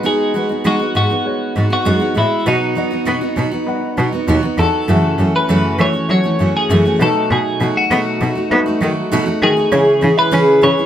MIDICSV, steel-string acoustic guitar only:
0, 0, Header, 1, 2, 480
1, 0, Start_track
1, 0, Tempo, 604839
1, 39, Time_signature, 4, 2, 24, 8
1, 8618, End_track
2, 0, Start_track
2, 0, Title_t, "Steel-string acoustic guitar"
2, 0, Program_c, 0, 25
2, 26, Note_on_c, 0, 56, 65
2, 31, Note_on_c, 0, 59, 65
2, 38, Note_on_c, 0, 63, 71
2, 40, Note_on_c, 0, 66, 75
2, 260, Note_off_c, 0, 56, 0
2, 267, Note_off_c, 0, 59, 0
2, 269, Note_on_c, 0, 56, 49
2, 274, Note_off_c, 0, 63, 0
2, 276, Note_on_c, 0, 59, 57
2, 280, Note_off_c, 0, 66, 0
2, 284, Note_on_c, 0, 63, 61
2, 289, Note_on_c, 0, 66, 58
2, 380, Note_off_c, 0, 66, 0
2, 390, Note_on_c, 0, 66, 48
2, 391, Note_off_c, 0, 63, 0
2, 394, Note_off_c, 0, 56, 0
2, 398, Note_off_c, 0, 59, 0
2, 401, Note_on_c, 0, 63, 39
2, 411, Note_on_c, 0, 59, 41
2, 505, Note_off_c, 0, 59, 0
2, 509, Note_off_c, 0, 63, 0
2, 510, Note_on_c, 0, 56, 70
2, 515, Note_off_c, 0, 66, 0
2, 515, Note_on_c, 0, 59, 76
2, 519, Note_on_c, 0, 63, 75
2, 524, Note_on_c, 0, 66, 77
2, 621, Note_off_c, 0, 66, 0
2, 630, Note_on_c, 0, 66, 45
2, 631, Note_off_c, 0, 63, 0
2, 635, Note_off_c, 0, 56, 0
2, 637, Note_off_c, 0, 59, 0
2, 641, Note_on_c, 0, 63, 40
2, 652, Note_on_c, 0, 59, 36
2, 751, Note_off_c, 0, 59, 0
2, 754, Note_on_c, 0, 56, 59
2, 755, Note_off_c, 0, 66, 0
2, 758, Note_off_c, 0, 63, 0
2, 760, Note_on_c, 0, 59, 53
2, 767, Note_on_c, 0, 63, 61
2, 774, Note_on_c, 0, 66, 55
2, 863, Note_off_c, 0, 66, 0
2, 871, Note_off_c, 0, 63, 0
2, 872, Note_on_c, 0, 66, 45
2, 877, Note_off_c, 0, 56, 0
2, 880, Note_off_c, 0, 59, 0
2, 880, Note_on_c, 0, 63, 40
2, 890, Note_on_c, 0, 59, 40
2, 1234, Note_off_c, 0, 59, 0
2, 1235, Note_on_c, 0, 56, 51
2, 1236, Note_off_c, 0, 66, 0
2, 1240, Note_off_c, 0, 63, 0
2, 1243, Note_on_c, 0, 59, 53
2, 1249, Note_on_c, 0, 63, 53
2, 1253, Note_on_c, 0, 66, 53
2, 1340, Note_off_c, 0, 66, 0
2, 1350, Note_on_c, 0, 66, 47
2, 1354, Note_off_c, 0, 63, 0
2, 1358, Note_off_c, 0, 56, 0
2, 1362, Note_off_c, 0, 59, 0
2, 1363, Note_on_c, 0, 63, 39
2, 1371, Note_on_c, 0, 59, 40
2, 1467, Note_off_c, 0, 59, 0
2, 1468, Note_off_c, 0, 63, 0
2, 1470, Note_on_c, 0, 56, 70
2, 1473, Note_off_c, 0, 66, 0
2, 1477, Note_on_c, 0, 59, 84
2, 1477, Note_on_c, 0, 63, 87
2, 1483, Note_on_c, 0, 66, 76
2, 1575, Note_off_c, 0, 66, 0
2, 1584, Note_on_c, 0, 66, 51
2, 1588, Note_off_c, 0, 63, 0
2, 1595, Note_off_c, 0, 56, 0
2, 1596, Note_off_c, 0, 59, 0
2, 1597, Note_on_c, 0, 63, 50
2, 1606, Note_on_c, 0, 59, 42
2, 1701, Note_off_c, 0, 59, 0
2, 1702, Note_on_c, 0, 56, 51
2, 1711, Note_on_c, 0, 59, 50
2, 1712, Note_off_c, 0, 66, 0
2, 1719, Note_off_c, 0, 63, 0
2, 1721, Note_on_c, 0, 66, 54
2, 1947, Note_off_c, 0, 59, 0
2, 1950, Note_off_c, 0, 56, 0
2, 1951, Note_on_c, 0, 47, 67
2, 1953, Note_on_c, 0, 54, 66
2, 1955, Note_off_c, 0, 66, 0
2, 1957, Note_on_c, 0, 59, 75
2, 1960, Note_on_c, 0, 63, 74
2, 1964, Note_on_c, 0, 66, 76
2, 2175, Note_off_c, 0, 54, 0
2, 2185, Note_off_c, 0, 59, 0
2, 2185, Note_on_c, 0, 54, 52
2, 2191, Note_off_c, 0, 63, 0
2, 2194, Note_on_c, 0, 59, 52
2, 2195, Note_off_c, 0, 66, 0
2, 2196, Note_off_c, 0, 47, 0
2, 2200, Note_on_c, 0, 63, 53
2, 2204, Note_on_c, 0, 66, 60
2, 2296, Note_off_c, 0, 66, 0
2, 2305, Note_on_c, 0, 66, 49
2, 2309, Note_off_c, 0, 63, 0
2, 2313, Note_off_c, 0, 54, 0
2, 2318, Note_off_c, 0, 59, 0
2, 2318, Note_on_c, 0, 63, 42
2, 2327, Note_on_c, 0, 59, 40
2, 2424, Note_off_c, 0, 59, 0
2, 2424, Note_on_c, 0, 47, 68
2, 2426, Note_off_c, 0, 63, 0
2, 2430, Note_off_c, 0, 66, 0
2, 2430, Note_on_c, 0, 54, 71
2, 2433, Note_on_c, 0, 59, 76
2, 2435, Note_on_c, 0, 63, 70
2, 2440, Note_on_c, 0, 66, 81
2, 2539, Note_off_c, 0, 66, 0
2, 2548, Note_on_c, 0, 66, 51
2, 2551, Note_off_c, 0, 63, 0
2, 2552, Note_off_c, 0, 47, 0
2, 2555, Note_off_c, 0, 54, 0
2, 2557, Note_off_c, 0, 59, 0
2, 2561, Note_on_c, 0, 63, 45
2, 2569, Note_on_c, 0, 59, 38
2, 2664, Note_off_c, 0, 59, 0
2, 2666, Note_on_c, 0, 54, 56
2, 2669, Note_off_c, 0, 63, 0
2, 2673, Note_on_c, 0, 59, 55
2, 2675, Note_off_c, 0, 66, 0
2, 2679, Note_on_c, 0, 63, 69
2, 2687, Note_on_c, 0, 66, 70
2, 2779, Note_off_c, 0, 66, 0
2, 2789, Note_on_c, 0, 66, 53
2, 2790, Note_off_c, 0, 63, 0
2, 2793, Note_off_c, 0, 54, 0
2, 2797, Note_off_c, 0, 59, 0
2, 2799, Note_on_c, 0, 63, 48
2, 2809, Note_on_c, 0, 59, 39
2, 3148, Note_off_c, 0, 59, 0
2, 3151, Note_on_c, 0, 54, 56
2, 3155, Note_off_c, 0, 63, 0
2, 3155, Note_off_c, 0, 66, 0
2, 3157, Note_on_c, 0, 59, 60
2, 3164, Note_on_c, 0, 63, 61
2, 3171, Note_on_c, 0, 66, 65
2, 3263, Note_off_c, 0, 66, 0
2, 3273, Note_on_c, 0, 66, 50
2, 3274, Note_off_c, 0, 63, 0
2, 3276, Note_off_c, 0, 54, 0
2, 3279, Note_off_c, 0, 59, 0
2, 3284, Note_on_c, 0, 63, 45
2, 3291, Note_on_c, 0, 59, 43
2, 3392, Note_off_c, 0, 59, 0
2, 3394, Note_on_c, 0, 47, 76
2, 3395, Note_off_c, 0, 63, 0
2, 3397, Note_off_c, 0, 66, 0
2, 3398, Note_on_c, 0, 54, 76
2, 3401, Note_on_c, 0, 59, 86
2, 3405, Note_on_c, 0, 63, 87
2, 3407, Note_on_c, 0, 66, 86
2, 3503, Note_off_c, 0, 66, 0
2, 3513, Note_on_c, 0, 66, 54
2, 3514, Note_off_c, 0, 63, 0
2, 3517, Note_off_c, 0, 47, 0
2, 3519, Note_off_c, 0, 54, 0
2, 3521, Note_off_c, 0, 59, 0
2, 3524, Note_on_c, 0, 63, 47
2, 3534, Note_on_c, 0, 59, 47
2, 3627, Note_off_c, 0, 59, 0
2, 3632, Note_on_c, 0, 54, 59
2, 3636, Note_off_c, 0, 63, 0
2, 3637, Note_off_c, 0, 66, 0
2, 3637, Note_on_c, 0, 59, 63
2, 3646, Note_on_c, 0, 63, 57
2, 3651, Note_on_c, 0, 66, 71
2, 3871, Note_on_c, 0, 42, 61
2, 3875, Note_on_c, 0, 49, 69
2, 3876, Note_off_c, 0, 54, 0
2, 3877, Note_off_c, 0, 59, 0
2, 3878, Note_off_c, 0, 66, 0
2, 3880, Note_off_c, 0, 63, 0
2, 3880, Note_on_c, 0, 52, 74
2, 3880, Note_on_c, 0, 57, 65
2, 3883, Note_on_c, 0, 61, 72
2, 3887, Note_on_c, 0, 66, 74
2, 4102, Note_off_c, 0, 52, 0
2, 4112, Note_off_c, 0, 57, 0
2, 4112, Note_on_c, 0, 52, 52
2, 4116, Note_off_c, 0, 42, 0
2, 4116, Note_off_c, 0, 61, 0
2, 4118, Note_off_c, 0, 49, 0
2, 4121, Note_on_c, 0, 57, 55
2, 4122, Note_off_c, 0, 66, 0
2, 4125, Note_on_c, 0, 61, 62
2, 4131, Note_on_c, 0, 66, 53
2, 4349, Note_off_c, 0, 52, 0
2, 4355, Note_off_c, 0, 57, 0
2, 4355, Note_on_c, 0, 42, 71
2, 4356, Note_off_c, 0, 61, 0
2, 4358, Note_off_c, 0, 66, 0
2, 4358, Note_on_c, 0, 49, 73
2, 4358, Note_on_c, 0, 52, 77
2, 4364, Note_on_c, 0, 57, 75
2, 4366, Note_on_c, 0, 61, 69
2, 4367, Note_on_c, 0, 66, 87
2, 4580, Note_off_c, 0, 52, 0
2, 4589, Note_off_c, 0, 57, 0
2, 4589, Note_on_c, 0, 52, 57
2, 4595, Note_off_c, 0, 61, 0
2, 4597, Note_off_c, 0, 42, 0
2, 4599, Note_off_c, 0, 49, 0
2, 4599, Note_on_c, 0, 57, 62
2, 4602, Note_off_c, 0, 66, 0
2, 4605, Note_on_c, 0, 61, 57
2, 4611, Note_on_c, 0, 66, 62
2, 4698, Note_off_c, 0, 66, 0
2, 4708, Note_on_c, 0, 66, 43
2, 4710, Note_off_c, 0, 61, 0
2, 4713, Note_off_c, 0, 57, 0
2, 4715, Note_off_c, 0, 52, 0
2, 4719, Note_on_c, 0, 61, 40
2, 4722, Note_on_c, 0, 57, 37
2, 4730, Note_on_c, 0, 52, 36
2, 4939, Note_off_c, 0, 66, 0
2, 4948, Note_off_c, 0, 61, 0
2, 4948, Note_on_c, 0, 66, 46
2, 4952, Note_off_c, 0, 57, 0
2, 4957, Note_on_c, 0, 61, 39
2, 4960, Note_off_c, 0, 52, 0
2, 4962, Note_on_c, 0, 57, 39
2, 4969, Note_on_c, 0, 52, 38
2, 5061, Note_off_c, 0, 52, 0
2, 5070, Note_off_c, 0, 57, 0
2, 5070, Note_on_c, 0, 52, 54
2, 5074, Note_off_c, 0, 66, 0
2, 5075, Note_off_c, 0, 61, 0
2, 5079, Note_on_c, 0, 57, 51
2, 5084, Note_on_c, 0, 61, 59
2, 5092, Note_on_c, 0, 66, 59
2, 5312, Note_off_c, 0, 52, 0
2, 5316, Note_off_c, 0, 57, 0
2, 5316, Note_on_c, 0, 42, 73
2, 5319, Note_off_c, 0, 61, 0
2, 5319, Note_off_c, 0, 66, 0
2, 5320, Note_on_c, 0, 49, 78
2, 5322, Note_on_c, 0, 52, 82
2, 5325, Note_on_c, 0, 57, 84
2, 5328, Note_on_c, 0, 61, 86
2, 5329, Note_on_c, 0, 66, 80
2, 5430, Note_off_c, 0, 66, 0
2, 5437, Note_off_c, 0, 61, 0
2, 5438, Note_off_c, 0, 42, 0
2, 5439, Note_on_c, 0, 66, 54
2, 5440, Note_off_c, 0, 49, 0
2, 5441, Note_off_c, 0, 52, 0
2, 5443, Note_off_c, 0, 57, 0
2, 5447, Note_on_c, 0, 61, 45
2, 5452, Note_on_c, 0, 57, 51
2, 5457, Note_on_c, 0, 52, 37
2, 5557, Note_off_c, 0, 57, 0
2, 5559, Note_off_c, 0, 66, 0
2, 5559, Note_on_c, 0, 47, 72
2, 5560, Note_off_c, 0, 52, 0
2, 5563, Note_off_c, 0, 61, 0
2, 5563, Note_on_c, 0, 54, 64
2, 5566, Note_on_c, 0, 57, 68
2, 5569, Note_on_c, 0, 63, 78
2, 5573, Note_on_c, 0, 66, 71
2, 6022, Note_off_c, 0, 54, 0
2, 6031, Note_off_c, 0, 57, 0
2, 6032, Note_on_c, 0, 54, 59
2, 6035, Note_off_c, 0, 63, 0
2, 6039, Note_off_c, 0, 47, 0
2, 6040, Note_on_c, 0, 57, 60
2, 6044, Note_off_c, 0, 66, 0
2, 6045, Note_on_c, 0, 63, 60
2, 6053, Note_on_c, 0, 66, 64
2, 6268, Note_off_c, 0, 54, 0
2, 6271, Note_off_c, 0, 57, 0
2, 6275, Note_on_c, 0, 47, 73
2, 6276, Note_off_c, 0, 63, 0
2, 6278, Note_off_c, 0, 66, 0
2, 6278, Note_on_c, 0, 54, 64
2, 6281, Note_on_c, 0, 57, 77
2, 6286, Note_on_c, 0, 63, 72
2, 6288, Note_on_c, 0, 66, 80
2, 6503, Note_off_c, 0, 54, 0
2, 6511, Note_off_c, 0, 57, 0
2, 6512, Note_on_c, 0, 54, 62
2, 6517, Note_off_c, 0, 47, 0
2, 6518, Note_off_c, 0, 63, 0
2, 6520, Note_on_c, 0, 57, 54
2, 6523, Note_off_c, 0, 66, 0
2, 6528, Note_on_c, 0, 63, 60
2, 6533, Note_on_c, 0, 66, 55
2, 6619, Note_off_c, 0, 66, 0
2, 6629, Note_on_c, 0, 66, 47
2, 6631, Note_off_c, 0, 63, 0
2, 6635, Note_off_c, 0, 54, 0
2, 6637, Note_off_c, 0, 57, 0
2, 6640, Note_on_c, 0, 63, 42
2, 6647, Note_on_c, 0, 57, 45
2, 6861, Note_off_c, 0, 66, 0
2, 6871, Note_on_c, 0, 66, 59
2, 6874, Note_off_c, 0, 63, 0
2, 6882, Note_off_c, 0, 57, 0
2, 6883, Note_on_c, 0, 63, 50
2, 6891, Note_on_c, 0, 57, 42
2, 6988, Note_off_c, 0, 57, 0
2, 6988, Note_on_c, 0, 54, 62
2, 6994, Note_off_c, 0, 63, 0
2, 6995, Note_off_c, 0, 66, 0
2, 6998, Note_on_c, 0, 57, 64
2, 7003, Note_on_c, 0, 63, 62
2, 7009, Note_on_c, 0, 66, 74
2, 7229, Note_off_c, 0, 54, 0
2, 7232, Note_off_c, 0, 57, 0
2, 7234, Note_on_c, 0, 47, 82
2, 7237, Note_off_c, 0, 63, 0
2, 7237, Note_off_c, 0, 66, 0
2, 7239, Note_on_c, 0, 54, 88
2, 7242, Note_on_c, 0, 57, 92
2, 7246, Note_on_c, 0, 63, 102
2, 7247, Note_on_c, 0, 66, 104
2, 7335, Note_off_c, 0, 66, 0
2, 7345, Note_off_c, 0, 63, 0
2, 7345, Note_on_c, 0, 66, 59
2, 7354, Note_on_c, 0, 63, 50
2, 7355, Note_off_c, 0, 57, 0
2, 7356, Note_off_c, 0, 47, 0
2, 7358, Note_off_c, 0, 54, 0
2, 7364, Note_on_c, 0, 57, 45
2, 7582, Note_off_c, 0, 66, 0
2, 7592, Note_on_c, 0, 66, 50
2, 7594, Note_off_c, 0, 63, 0
2, 7601, Note_off_c, 0, 57, 0
2, 7603, Note_on_c, 0, 63, 43
2, 7613, Note_on_c, 0, 57, 41
2, 7711, Note_on_c, 0, 49, 72
2, 7715, Note_off_c, 0, 57, 0
2, 7715, Note_off_c, 0, 66, 0
2, 7715, Note_on_c, 0, 52, 78
2, 7716, Note_off_c, 0, 63, 0
2, 7718, Note_on_c, 0, 61, 83
2, 7719, Note_on_c, 0, 64, 73
2, 7724, Note_on_c, 0, 68, 79
2, 7936, Note_off_c, 0, 52, 0
2, 7941, Note_off_c, 0, 61, 0
2, 7945, Note_on_c, 0, 52, 57
2, 7947, Note_off_c, 0, 64, 0
2, 7951, Note_on_c, 0, 61, 55
2, 7953, Note_off_c, 0, 68, 0
2, 7954, Note_off_c, 0, 49, 0
2, 7957, Note_on_c, 0, 64, 57
2, 7963, Note_on_c, 0, 68, 65
2, 8179, Note_off_c, 0, 52, 0
2, 8181, Note_off_c, 0, 61, 0
2, 8184, Note_on_c, 0, 49, 74
2, 8186, Note_off_c, 0, 64, 0
2, 8189, Note_on_c, 0, 52, 68
2, 8190, Note_off_c, 0, 68, 0
2, 8191, Note_on_c, 0, 61, 82
2, 8195, Note_on_c, 0, 64, 84
2, 8199, Note_on_c, 0, 68, 88
2, 8414, Note_off_c, 0, 52, 0
2, 8421, Note_off_c, 0, 61, 0
2, 8424, Note_on_c, 0, 52, 58
2, 8430, Note_off_c, 0, 64, 0
2, 8430, Note_on_c, 0, 61, 58
2, 8431, Note_off_c, 0, 49, 0
2, 8433, Note_off_c, 0, 68, 0
2, 8440, Note_on_c, 0, 64, 58
2, 8443, Note_on_c, 0, 68, 60
2, 8540, Note_off_c, 0, 68, 0
2, 8550, Note_off_c, 0, 52, 0
2, 8550, Note_on_c, 0, 68, 48
2, 8553, Note_off_c, 0, 61, 0
2, 8553, Note_off_c, 0, 64, 0
2, 8562, Note_on_c, 0, 64, 51
2, 8571, Note_on_c, 0, 61, 38
2, 8618, Note_off_c, 0, 61, 0
2, 8618, Note_off_c, 0, 64, 0
2, 8618, Note_off_c, 0, 68, 0
2, 8618, End_track
0, 0, End_of_file